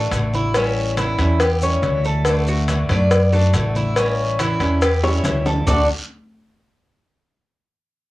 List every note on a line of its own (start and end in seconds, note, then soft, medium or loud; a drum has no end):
0.00 0.11 A3 medium
0.00 0.12 D4 medium
0.00 0.11 F#4 medium
0.00 0.32 A4 medium
0.11 1.12 A1 loud
0.11 0.54 D3 medium
0.11 0.54 A3 medium
0.11 0.54 D4 medium
0.11 0.54 F#4 medium
0.11 cowbell medium
0.11 high conga medium
0.11 short guiro medium
0.11 maracas medium
0.33 0.55 E4 medium
0.33 high conga medium
0.33 short guiro medium
0.33 maracas soft
0.54 0.97 E3 medium
0.54 0.97 G3 medium
0.54 0.97 C#4 medium
0.54 0.98 E4 medium
0.54 cowbell loud
0.54 long guiro medium
0.54 maracas medium
0.76 high conga soft
0.97 1.18 E3 medium
0.97 1.18 G3 medium
0.97 1.18 C#4 medium
0.97 1.40 E4 medium
0.97 1.17 E4 medium
0.97 cowbell medium
0.97 high conga loud
0.97 short guiro medium
0.97 maracas medium
1.18 1.79 E2 loud
1.18 1.39 G3 medium
1.18 1.39 C#4 medium
1.18 1.39 E4 medium
1.18 cowbell medium
1.18 short guiro medium
1.18 maracas soft
1.40 1.62 G4 medium
1.40 muted steel-string acoustic guitar stroke medium
1.40 cowbell loud
1.40 high conga soft
1.40 long guiro medium
1.40 maracas medium
1.61 1.82 G3 medium
1.61 1.82 C#4 medium
1.61 1.82 E4 medium
1.61 2.04 C#5 medium
1.61 high conga soft
1.61 maracas medium
1.82 2.83 D2 loud
1.82 2.24 E3 medium
1.82 2.25 G3 medium
1.82 2.25 C#4 medium
1.82 2.25 E4 medium
1.82 cowbell medium
1.82 high conga medium
1.82 short guiro medium
1.82 maracas medium
2.04 2.46 A4 medium
2.04 short guiro medium
2.04 maracas soft
2.25 2.66 D3 medium
2.25 2.67 A3 medium
2.25 2.68 D4 medium
2.25 2.68 F#4 medium
2.25 cowbell loud
2.25 long guiro medium
2.25 maracas medium
2.47 2.89 F#4 medium
2.47 maracas medium
2.68 2.89 D3 medium
2.68 2.89 A3 medium
2.68 2.89 D4 medium
2.68 2.88 F#4 medium
2.68 cowbell medium
2.68 high conga loud
2.68 short guiro medium
2.68 maracas medium
2.89 3.50 F#2 loud
2.89 3.10 A3 medium
2.89 3.11 D4 medium
2.89 3.10 F#4 medium
2.89 3.32 D5 medium
2.89 cowbell medium
2.89 high conga soft
2.89 low conga medium
2.89 short guiro medium
2.89 maracas soft
3.11 muted steel-string acoustic guitar stroke medium
3.11 cowbell loud
3.11 long guiro medium
3.11 maracas medium
3.32 3.53 A3 medium
3.32 3.54 D4 medium
3.32 3.53 F#4 medium
3.32 3.74 A4 medium
3.32 high conga soft
3.32 maracas medium
3.53 4.54 A1 medium
3.53 3.95 D3 medium
3.53 3.96 A3 medium
3.53 3.96 D4 medium
3.53 3.97 F#4 medium
3.53 cowbell medium
3.53 high conga medium
3.53 short guiro medium
3.53 maracas medium
3.75 3.96 E4 medium
3.75 high conga medium
3.75 short guiro medium
3.75 maracas soft
3.96 4.38 E3 medium
3.96 4.38 G3 medium
3.96 4.39 C#4 medium
3.96 4.38 C#4 medium
3.96 4.39 E4 medium
3.96 cowbell loud
3.96 long guiro medium
3.96 maracas medium
4.19 high conga soft
4.39 4.60 E3 medium
4.39 4.60 G3 medium
4.39 4.60 C#4 medium
4.39 4.81 E4 medium
4.39 4.59 E4 medium
4.39 cowbell medium
4.39 high conga loud
4.39 short guiro medium
4.39 maracas medium
4.60 5.20 E2 medium
4.60 4.81 G3 medium
4.60 4.81 C#4 medium
4.60 4.81 E4 medium
4.60 cowbell medium
4.60 short guiro medium
4.60 maracas soft
4.81 5.03 G4 medium
4.81 muted steel-string acoustic guitar stroke medium
4.81 cowbell loud
4.81 high conga soft
4.81 long guiro medium
4.81 maracas medium
5.03 5.23 G3 medium
5.03 5.24 C#4 medium
5.03 5.24 E4 medium
5.03 5.45 C#5 medium
5.03 high bongo medium
5.03 high conga soft
5.23 5.62 D2 medium
5.23 5.66 E3 medium
5.23 5.66 G3 medium
5.23 5.67 C#4 medium
5.23 5.67 E4 medium
5.23 cowbell medium
5.23 low bongo medium
5.23 high conga medium
5.23 short guiro medium
5.23 maracas medium
5.46 5.66 A4 medium
5.46 low bongo medium
5.46 high conga soft
5.46 short guiro medium
5.46 maracas soft
5.66 5.87 D2 loud
5.66 5.85 D3 medium
5.66 5.85 A3 medium
5.66 5.87 D4 loud
5.66 5.85 D4 medium
5.66 5.87 F#4 medium
5.66 5.86 F#4 medium
5.66 5.87 A4 medium
5.66 5.88 D5 loud
5.66 low bongo medium
5.66 low conga loud
5.66 long guiro loud
5.66 maracas loud